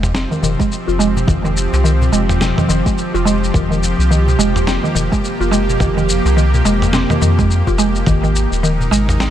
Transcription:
Already playing: analog synth bass F1, synth drone F3 C4 G4, synth pluck G#3
0.03 mid tom, darbuka ka, shaker
0.14 synth pluck C4, snare, darbuka tek, shaker
0.31 synth pluck D#3, darbuka ka, shaker
0.43 analog synth bass F1, synth pluck D#3, darbuka dum, shaker
0.59 synth pluck G#3, kick, darbuka tek, shaker
0.72 shaker
0.88 analog synth bass F1, synth pluck F4, shaker
0.99 synth pluck G#3, darbuka tek, shaker
1.17 darbuka tek, darbuka dum, shaker
1.28 analog synth bass F1, synth pluck D#3, kick, mid tom, shaker
1.44 synth pluck D#3, darbuka ka, darbuka tek, shaker
1.57 shaker
1.73 analog synth bass C2, darbuka tek, shaker
1.84 synth pluck D#3, shaker
2.02 darbuka dum, shaker
2.12 analog synth bass F1, synth pluck G#3, shaker
2.29 mid tom, darbuka ka, shaker
2.41 synth pluck C4, snare, darbuka ka, darbuka dum, shaker
2.58 synth pluck D#3, mid tom, darbuka dum, shaker
2.69 analog synth bass F1, synth pluck D#3, darbuka tek, shaker
2.86 synth pluck G#3, kick, darbuka ka, shaker
2.98 shaker
3.14 analog synth bass F1, synth pluck F4, darbuka ka, darbuka tek, shaker
3.25 synth pluck G#3, shaker
3.44 shaker
3.54 analog synth bass F1, synth pluck D#3, synth drone A#3, kick, mid tom, shaker
3.71 synth pluck D#3, darbuka ka, shaker
3.83 shaker
3.99 analog synth bass C2, shaker
4.11 synth pluck D#3, shaker
4.28 darbuka dum, shaker
4.39 analog synth bass F1, synth pluck G#3, shaker
4.56 mid tom, darbuka ka, shaker
4.67 synth pluck C4, snare, darbuka tek, shaker
4.84 synth pluck D#3, darbuka ka, shaker
4.95 analog synth bass F1, synth pluck D#3, darbuka dum, shaker
5.12 synth pluck G#3, kick, darbuka tek, shaker
5.24 shaker
5.40 analog synth bass F1, synth pluck F4, shaker
5.51 synth pluck G#3, darbuka tek, shaker
5.69 darbuka tek, darbuka dum, shaker
5.80 analog synth bass F1, synth pluck D#3, kick, mid tom, shaker
5.97 synth pluck D#3, darbuka ka, darbuka tek, shaker
6.09 shaker
6.25 analog synth bass C2, darbuka tek, shaker
6.37 synth pluck D#3, shaker
6.54 darbuka dum, shaker
6.65 analog synth bass F1, synth pluck G#3, shaker
6.82 mid tom, darbuka ka, shaker
6.93 synth pluck C4, snare, darbuka ka, darbuka dum, shaker
7.10 synth pluck D#3, mid tom, darbuka dum, shaker
7.22 analog synth bass F2, synth pluck D#3, darbuka tek, shaker
7.39 synth pluck G#3, kick, darbuka ka, shaker
7.51 shaker
7.67 analog synth bass F1, synth pluck F4, kick, darbuka ka, darbuka tek, shaker
7.78 synth pluck G#3, shaker
7.96 shaker
8.06 analog synth bass G#1, synth pluck D#3, synth drone G#3 D#4 A#4, kick, mid tom, shaker
8.23 synth pluck D#3, darbuka ka, shaker
8.36 shaker
8.52 analog synth bass D#1, shaker
8.63 synth pluck D#3, shaker
8.81 darbuka dum, shaker
8.91 analog synth bass G#1, synth pluck G#3, shaker
9.09 mid tom, darbuka ka, shaker
9.20 synth pluck C4, snare, darbuka tek, shaker

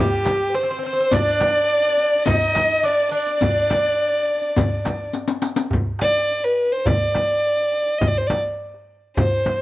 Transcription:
Already playing: bouzouki G3, violin section G4
0.00 violin G4
0.25 riq, darbuka tek, frame drum
0.54 bouzouki C4, violin section C5, violin C5, riq
0.63 bouzouki C4
0.71 bouzouki C4
0.79 bouzouki C4
0.83 bouzouki C4, violin section C5, violin C5
0.93 bouzouki C4
0.98 bouzouki C4, riq
1.11 bouzouki D4, violin section D5, violin D5, riq, darbuka dum, frame drum
1.40 riq, darbuka tek, frame drum
1.97 riq
2.12 darbuka ka
2.26 bouzouki D#4, violin section D#5, violin D#5, riq, darbuka dum, frame drum
2.41 riq
2.55 riq, darbuka tek, frame drum
2.83 bouzouki D4, violin D5, violin section D5, riq, darbuka ka
3.11 bouzouki D4, violin D5, violin section D5
3.27 riq
3.41 riq, darbuka dum, frame drum
3.70 riq, darbuka tek, frame drum
4.14 darbuka ka
4.42 riq, darbuka ka
4.56 riq, darbuka dum, frame drum
4.85 riq, darbuka tek, frame drum
5.13 riq, darbuka tek
5.28 riq, darbuka ka
5.42 riq, darbuka tek
5.56 riq, darbuka ka
5.71 darbuka dum, frame drum
5.99 violin D5, darbuka tek, frame drum
6.43 violin B4, darbuka ka
6.72 violin C5
6.86 violin D5, darbuka dum, frame drum
7.15 darbuka tek, frame drum
7.98 violin D#5, darbuka dum, frame drum
8.08 violin D5
8.18 violin C5
8.27 violin D5, darbuka tek, frame drum
8.74 darbuka ka
9.17 violin C5, frame drum, darbuka dum
9.46 darbuka tek, frame drum

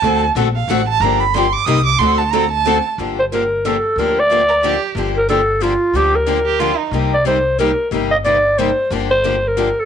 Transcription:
Already playing: violin A5
0.02 upright bass D2, steel-string acoustic guitar D3 A3 C4 F#4 A4
0.35 upright bass A#1, steel-string acoustic guitar D3 A3 C4 F#4 A4
0.55 violin F5
0.68 upright bass A1, steel-string acoustic guitar D3 A3 C4 F#4 A4, violin F#5
0.88 violin A5
1.00 upright bass G1, steel-string acoustic guitar D3 F3 A#3 D4 G4, violin A#5
1.20 violin B5
1.34 steel-string acoustic guitar D3 F3 A#3 D4 G4, violin C6
1.53 violin D6
1.65 upright bass C2, steel-string acoustic guitar C3 G3 A#3 D#4 G4, violin D#6
1.86 violin D6
1.99 upright bass D2, steel-string acoustic guitar D3 A3 C4, violin C6
2.03 steel-string acoustic guitar F#4 A4
2.18 violin A5
2.31 steel-string acoustic guitar D3 A3 C4 F#4 A4, violin A#5
2.52 violin A5
2.66 steel-string acoustic guitar D3 A3 C4 F#4 A4
2.98 upright bass G1, steel-string acoustic guitar D3 F3 A#3 D4 G4
3.19 clarinet C5
3.32 steel-string acoustic guitar D3 F3 A#3 D4 G4, clarinet A#4
3.65 steel-string acoustic guitar D3 F3 A#3 D4 G4, clarinet A4
3.96 upright bass D2, steel-string acoustic guitar D3 F3 A#3, clarinet A#4
4.00 steel-string acoustic guitar D4 G4
4.20 clarinet D5
4.30 steel-string acoustic guitar D3 F3 A#3 D4 G4
4.49 violin A#4
4.62 steel-string acoustic guitar D3 F3 A#3 D4 G4, violin G4
4.95 upright bass G1, steel-string acoustic guitar D3 F3 A#3 D4 G4
5.17 clarinet A#4
5.29 steel-string acoustic guitar D3 F3 A#3 D4 G4, clarinet A4
5.60 steel-string acoustic guitar D3 F3 A#3 D4 G4, clarinet F4
5.93 upright bass D2, steel-string acoustic guitar D3 F3 A#3 D4 G4, clarinet G4
6.16 clarinet A#4
6.26 steel-string acoustic guitar D3 F3 A#3 D4 G4
6.46 violin G4
6.60 steel-string acoustic guitar D3 F3 A#3 D4 G4, violin F4
6.78 violin D#4
6.91 upright bass C2, steel-string acoustic guitar C3 G3 A#3 D#4 G4
7.14 clarinet D5
7.25 steel-string acoustic guitar C3 G3 A#3 D#4 G4, clarinet C5
7.58 steel-string acoustic guitar C3 G3 A#3 D#4 G4, clarinet A#4
7.91 upright bass G1, steel-string acoustic guitar C3 G3 A#3 D#4 G4
8.11 clarinet D#5
8.24 steel-string acoustic guitar C3 G3 A#3 D#4 G4, clarinet D5
8.58 steel-string acoustic guitar C3 G3 A#3 D#4 G4, clarinet C5
8.90 upright bass G1, steel-string acoustic guitar D3 F3 A#3 D4 G4
9.11 clarinet C5
9.24 steel-string acoustic guitar D3 F3 A#3 D4 G4
9.47 clarinet A#4
9.57 steel-string acoustic guitar D3 F3 A#3 D4 G4
9.79 clarinet A4

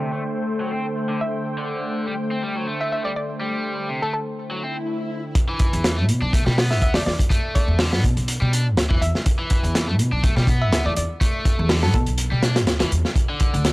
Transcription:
Already playing: analog synth pad D3 A3 C5 G5
0.12 overdriven electric guitar A3
0.61 overdriven electric guitar F#3
0.72 overdriven electric guitar C4
1.09 overdriven electric guitar D3
1.21 synth pluck E5
1.58 overdriven electric guitar D3
2.07 overdriven electric guitar G3
2.31 overdriven electric guitar C4
2.43 overdriven electric guitar G3
2.56 overdriven electric guitar F#3
2.67 overdriven electric guitar A3
2.81 synth pluck E5
2.92 synth pluck E5
3.05 overdriven electric guitar G3, synth pluck D5
3.16 synth pluck D5
3.41 overdriven electric guitar G3
3.89 overdriven electric guitar C3
4.02 overdriven electric guitar A3, synth pluck A4
4.13 synth pluck A4
4.38 swell
4.51 overdriven electric guitar F#3
4.63 overdriven electric guitar C4
5.35 kick, closed hi-hat
5.49 overdriven electric guitar E3
5.59 kick, closed hi-hat
5.73 upright bass E2, closed hi-hat
5.84 snare, closed hi-hat
5.98 overdriven electric guitar A3
6.09 upright bass B2, closed hi-hat
6.22 upright bass B1, overdriven electric guitar D4
6.33 overdriven electric guitar A3, kick, closed hi-hat
6.46 upright bass B2, overdriven electric guitar G3, snare
6.57 overdriven electric guitar B3, snare, open hi-hat
6.71 synth pluck E5, snare
6.82 upright bass D2, synth pluck E5, kick, closed hi-hat
6.94 upright bass E2, overdriven electric guitar A3, synth pluck D5, snare, open hi-hat
7.06 upright bass E2, synth pluck D5, snare
7.19 kick, closed hi-hat
7.30 overdriven electric guitar A3, kick, closed hi-hat
7.55 synth pluck D5, kick, closed hi-hat
7.68 upright bass E2
7.79 overdriven electric guitar D3, snare, open hi-hat
7.92 overdriven electric guitar B3, snare
8.04 upright bass B2, kick, closed hi-hat
8.17 upright bass B1, closed hi-hat
8.28 closed hi-hat
8.41 upright bass B2, overdriven electric guitar G3
8.53 overdriven electric guitar D4, closed hi-hat
8.77 upright bass D2, snare, closed hi-hat
8.90 upright bass E2, overdriven electric guitar E3, kick
9.01 upright bass E2, synth pluck E5, closed hi-hat
9.15 snare
9.26 kick, closed hi-hat
9.39 overdriven electric guitar E3
9.50 kick, closed hi-hat
9.63 upright bass E2, closed hi-hat
9.75 snare, closed hi-hat
9.88 overdriven electric guitar A3
9.99 upright bass B2, closed hi-hat
10.12 upright bass B1, overdriven electric guitar D4
10.24 overdriven electric guitar A3, kick, closed hi-hat
10.36 upright bass B2, overdriven electric guitar G3, snare
10.47 overdriven electric guitar B3, kick, closed hi-hat
10.62 synth pluck E5
10.72 upright bass D2, synth pluck E5, snare, closed hi-hat
10.85 upright bass E2, overdriven electric guitar A3, synth pluck D5
10.96 upright bass E2, synth pluck D5, closed hi-hat
11.21 overdriven electric guitar A3, kick, closed hi-hat
11.45 kick, closed hi-hat
11.59 upright bass E2
11.69 overdriven electric guitar D3, snare, open hi-hat
11.83 overdriven electric guitar B3, synth pluck A4, snare
11.94 upright bass B2, synth pluck A4, kick, closed hi-hat
12.06 upright bass B1, closed hi-hat
12.18 closed hi-hat
12.32 upright bass B2, overdriven electric guitar G3
12.43 overdriven electric guitar D4, snare, closed hi-hat
12.56 snare, closed hi-hat
12.67 upright bass D2, snare, closed hi-hat
12.80 upright bass E2, overdriven electric guitar E3, snare, closed hi-hat
12.92 upright bass E2, closed hi-hat
13.05 snare
13.16 kick, closed hi-hat
13.29 overdriven electric guitar D3
13.40 kick, closed hi-hat
13.54 upright bass D2, closed hi-hat
13.65 snare, closed hi-hat

